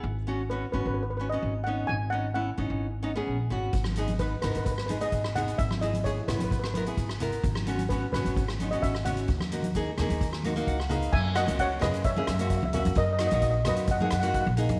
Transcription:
0.03 G#1
0.27 B3 C#4 F#4
0.50 B3 C#4 F#4 B4
0.72 G#1 B3 C#4 F#4 B4
0.80 B4
0.86 G#1 B4
0.94 B4
1.03 B4
1.10 B4
1.17 B3 C#4 F#4 B4
1.30 B3 C#4 D#5
1.34 F#4
1.43 G#1
1.64 B3 C#4 F#5
1.68 D#4
1.87 G#1 G#5
2.10 B3 C#4 D#4 F#5
2.34 B3 C#4 E4 F#5
2.58 G#1 B3 C#4 D#4
2.70 G#1
3.03 B3 C#4 D#4
3.16 B3 C#4 G#4
3.27 A#1
3.50 G#1 B3 C#4 F#4
3.73 G#1, kick, closed hi-hat
3.84 cross-stick, high conga
3.96 B3 D#4 G#4, closed hi-hat
4.08 closed hi-hat, high conga
4.19 B3 D#4 B4, kick, closed hi-hat
4.42 G#1 B3 D#4 A#4 B4, cross-stick, closed hi-hat, low conga
4.51 B4, closed hi-hat
4.56 G#1 B4, high conga
4.65 B4, kick, closed hi-hat
4.72 B4
4.78 B4, cross-stick
4.86 B3 D#4 G#4 B4, closed hi-hat, high conga
5.01 B3 D#4 G#4 D#5, closed hi-hat
5.12 G#1, kick, closed hi-hat
5.24 cross-stick
5.36 B3 D#4 G#4 F#5, closed hi-hat, low conga
5.48 closed hi-hat
5.58 G#1 E5, kick, closed hi-hat
5.71 cross-stick, high conga
5.81 B3 E4 G#4 D#5, closed hi-hat
5.94 closed hi-hat, high conga
6.04 B3 E4 G#4 C#5, kick, closed hi-hat
6.28 G#1 B3 E4 B4, cross-stick, closed hi-hat, low conga
6.36 B4, high conga
6.40 G#1, closed hi-hat
6.44 B4
6.51 B4, kick, closed hi-hat
6.59 B4
6.64 B4, cross-stick
6.74 B3 E4 A#4 B4, closed hi-hat, high conga
6.82 B4
6.86 B3 E4 G#4, closed hi-hat
6.97 G#1, kick, closed hi-hat
7.09 cross-stick
7.20 B3 E4 A#4, closed hi-hat, low conga
7.32 closed hi-hat
7.44 G#1, kick, closed hi-hat
7.55 cross-stick, high conga
7.67 B3 C#4 F#4, closed hi-hat
7.78 closed hi-hat, high conga
7.89 B3 C#4 F#4 B4, kick, closed hi-hat
8.12 G#1 B3 C#4 F#4 B4, cross-stick, closed hi-hat, low conga
8.25 G#1, closed hi-hat, high conga
8.37 kick, closed hi-hat
8.48 cross-stick
8.59 B3 C#4 D#4, closed hi-hat, high conga
8.71 B3 C#4 F#4 D#5, closed hi-hat
8.82 G#1 E5, kick, closed hi-hat
8.95 cross-stick
9.05 B3 C#4 F#4 F#5, closed hi-hat, low conga
9.17 closed hi-hat
9.28 D#2, kick, closed hi-hat
9.40 cross-stick, high conga
9.52 A#3 D#4 F#4, closed hi-hat
9.63 closed hi-hat, high conga
9.75 A#3 D#4 G#4, kick, closed hi-hat
9.98 D#2 A#3 D#4 G#4, cross-stick, closed hi-hat, low conga
10.09 D#2, closed hi-hat, high conga
10.21 kick, closed hi-hat
10.33 cross-stick
10.43 A#3 D#4 F#4, closed hi-hat, high conga
10.56 A#3 D#4 F#4, closed hi-hat
10.67 C#2 F#5, kick, closed hi-hat
10.80 cross-stick
10.89 A#3 D#4 G#4 B4, closed hi-hat, low conga
11.02 closed hi-hat
11.12 F#2 E5 G#5, kick, crash
11.35 A#3 C#4 F#4 D#5 F#5, cross-stick, closed hi-hat
11.46 C#2 A#3 C#4 F#4, closed hi-hat, high conga
11.59 C#5 F#5, kick, closed hi-hat
11.79 F#2 A#3 C#4 G#4 B4 D#5, cross-stick, closed hi-hat, low conga
11.94 closed hi-hat
12.04 C#5 E5, kick, closed hi-hat
12.11 E5
12.16 A#3 C#4 G#4 E5, high conga
12.27 F#2 E5, cross-stick, closed hi-hat
12.34 E5
12.39 A#3 C#4 F#4 E5, closed hi-hat
12.50 E5, kick, closed hi-hat
12.57 E5
12.63 C#2 E5, high conga
12.73 A#3 C#4 F#4 E5, closed hi-hat, low conga
12.79 E5
12.85 F#2, closed hi-hat, high conga
12.95 F#2 A#4 D#5, kick, closed hi-hat
13.05 D#5
13.13 D#5
13.19 A#3 D#4 F#4 D#5, cross-stick, closed hi-hat
13.27 D#5, closed hi-hat
13.32 A#1 A#3 D#4 F#4 D#5, high conga
13.42 D#5, kick, closed hi-hat
13.50 D#5
13.65 F#2 A#3 D#4 F#4 B4 D#5, cross-stick, closed hi-hat, low conga
13.76 closed hi-hat
13.87 D#5 F#5, kick, closed hi-hat
13.98 A#3 D#4 G#4 F#5, high conga
14.04 F#5
14.11 F#2 F#5, cross-stick, closed hi-hat
14.20 A#3 D#4 F#4 F#5, closed hi-hat
14.28 F#5
14.34 F#5, kick, closed hi-hat
14.42 F#5
14.47 A#1, high conga
14.57 A#3 D#4 G#4, closed hi-hat
14.69 F#2, closed hi-hat, high conga

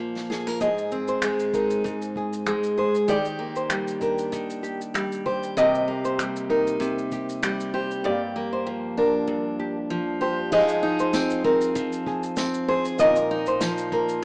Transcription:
Already playing: A#2 A#3 F4 A#4
0.00 F3
0.16 snare
0.30 G#4, snare
0.47 A#4, snare
0.61 G#2 G#4 D#5, kick, shaker
0.78 shaker
0.92 C4, shaker
1.08 C5, shaker
1.22 G#3, finger snap, shaker
1.39 shaker
1.53 D#4 A#4, kick, shaker
1.70 shaker
1.84 G#2, kick, shaker
2.02 shaker
2.16 G#4, kick
2.33 shaker
2.46 G#3, finger snap, shaker
2.63 shaker
2.77 G#4 C5
2.95 shaker
3.08 D#3 G4 D5, kick, shaker
3.25 shaker
3.39 A#3
3.56 C5, shaker
3.70 G3, finger snap, shaker
3.88 shaker
4.01 D4 A#4, kick, shaker
4.18 shaker
4.32 D#3, kick, shaker
4.50 shaker
4.63 G4, shaker
4.81 shaker
4.94 G3, finger snap, shaker
5.12 shaker
5.26 G4 C5, kick
5.43 shaker
5.56 C3 C4 G4 A#4 D#5, kick, shaker
5.60 D#5
5.75 shaker
5.88 A#3
6.05 C5, shaker
6.19 G3, finger snap, shaker
6.36 shaker
6.50 D#4 A#4, kick
6.67 shaker
6.80 C3, kick, shaker
6.98 shaker
7.11 G4, kick, shaker
7.29 shaker
7.43 G3, finger snap, shaker
7.60 shaker
7.74 G4 C5
7.91 shaker
8.03 G2 A#3 G4 D5
8.07 F5
8.36 A#3
8.53 C5
8.67 F3
8.97 D4 A#4
9.27 G2
9.60 G4
9.90 F3
10.21 G4 C5
10.51 F3 D#4 G#4 C5 D#5 F5, kick, crash
10.69 shaker
10.83 D#4
10.99 C5, shaker
11.13 C4, snare, tambourine, shaker
11.30 shaker
11.44 C4 A#4, kick
11.61 shaker
11.75 F3, kick, shaker
11.93 shaker
12.07 G#4, kick
12.23 shaker
12.37 C4, snare, tambourine, shaker
12.54 shaker
12.68 G#4 C5
12.85 shaker
12.98 A#2 D#4 F4 A#4 D#5 F5, kick, shaker
13.16 shaker
13.31 D#4
13.46 C5, shaker
13.61 F3, snare, tambourine, shaker
13.78 shaker
13.92 A#3 A#4, kick
14.09 shaker

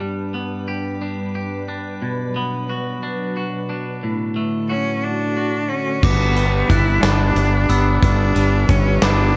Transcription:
Already playing: G2 G3 B3 D4 G4 B4
0.01 G3
0.34 B3
0.68 G4
1.01 D4
1.35 G4
1.68 D4
2.02 B2 F#3
2.36 B3
2.69 F#4
3.03 D4
3.37 F#4
3.70 D4
4.03 A2 D3 A3 F#4
4.36 A3
4.69 C#4 F#4
5.03 D4
5.37 F#4
5.68 C#4
6.02 G1 G2 B3 G4 B4 B5 D6, kick, crash
6.36 G3, closed hi-hat
6.68 G1 D4 E4 F#6, kick, closed hi-hat
7.01 G1 B3 D4, snare, closed hi-hat
7.35 G1, closed hi-hat
7.69 G1 B3 E6, closed hi-hat
8.02 G1 G2 D4, kick, closed hi-hat
8.35 G1 G3, closed hi-hat
8.69 G1 C#4, kick, closed hi-hat
9.02 G1 B3 D4 D6, snare, closed hi-hat

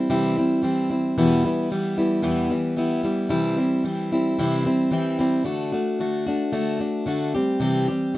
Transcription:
0.10 C3 E3 G3 C4 E4
0.37 G3 C4 E4
0.62 E3 G3 C4 E4
0.90 G3 C4 E4
1.18 E2 B2 E3 G3 B3 E4
1.44 E3 G3 B3 E4
1.70 E3 G3 B3 E4
1.98 E3 G3 B3 E4
2.22 E2 B2 E3 G3 B3 E4
2.50 E3 G3 B3 E4
2.76 E3 G3 B3 E4
3.03 E3 G3 B3 E4
3.29 C3 E3 G3 C4 E4
3.57 G3 C4 E4
3.84 E3 G3 C4 E4
4.12 G3 C4 E4
4.39 C3 E3 G3 C4 E4
4.65 G3 C4 E4
4.91 E3 G3 C4 E4
5.19 G3 C4 E4
5.44 D3 A3 D4 F#4
5.72 A3 D4 F#4
5.99 D3 A3 D4 F#4
6.27 A3 D4 F#4
6.52 D3 A3 D4 F#4
6.80 A3 D4 F#4
7.06 D3 A3 D4 F#4
7.35 G3 C4 G4
7.60 C3 E3 G3 C4 G4
7.88 G3 C4 G4
8.14 E3

